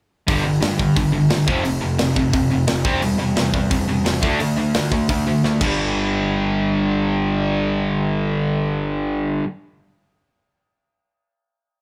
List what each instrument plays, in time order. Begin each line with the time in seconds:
0.28 picked electric bass G1, distorted electric guitar G2 D3 G3, kick, open hi-hat
0.45 picked electric bass G1, distorted electric guitar G2 D3
0.62 distorted electric guitar G2 D3, picked electric bass G2, snare, open hi-hat
0.78 distorted electric guitar G2 D3, kick
0.96 picked electric bass G1, distorted electric guitar G2 D3, kick, open hi-hat
1.12 picked electric bass G1, distorted electric guitar G2 D3
1.30 picked electric bass G1, distorted electric guitar G2 D3, snare, open hi-hat
1.47 picked electric bass F1, distorted electric guitar F2 C3 F3, kick
1.64 picked electric bass F1, distorted electric guitar F2 C3, open hi-hat
1.81 picked electric bass F1, distorted electric guitar F2 C3
1.99 picked electric bass F1, distorted electric guitar F2 C3, snare, open hi-hat
2.16 picked electric bass F1, distorted electric guitar F2 C3, kick
2.33 picked electric bass F1, distorted electric guitar F2 C3, kick, open hi-hat
2.50 picked electric bass F1, distorted electric guitar F2 C3
2.67 picked electric bass F1, distorted electric guitar F2 C3, snare, open hi-hat
2.85 picked electric bass E1, distorted electric guitar C3 G3 C4, kick
3.02 picked electric bass E1, distorted electric guitar C3 G3, open hi-hat
3.19 picked electric bass E1, distorted electric guitar C3 G3
3.36 picked electric bass E2, distorted electric guitar C3 G3, snare, open hi-hat
3.54 distorted electric guitar C3 G3, kick
3.71 picked electric bass E1, distorted electric guitar C3 G3, kick, open hi-hat
3.88 picked electric bass E1, distorted electric guitar C3 G3
4.05 picked electric bass E1, distorted electric guitar C3 G3, snare, open hi-hat
4.22 picked electric bass D2, distorted electric guitar D3 A3 D4, kick
4.40 picked electric bass D2, distorted electric guitar D3 A3, open hi-hat
4.57 picked electric bass D2, distorted electric guitar D3 A3
4.74 picked electric bass D2, distorted electric guitar D3 A3, snare, open hi-hat
4.92 picked electric bass D2, distorted electric guitar D3 A3, kick
5.09 picked electric bass D2, distorted electric guitar D3 A3, kick, open hi-hat
5.27 picked electric bass D2, distorted electric guitar D3 A3
5.44 picked electric bass D2, distorted electric guitar D3 A3, snare
5.61 picked electric bass G1, distorted electric guitar G2 D3 G3, kick, crash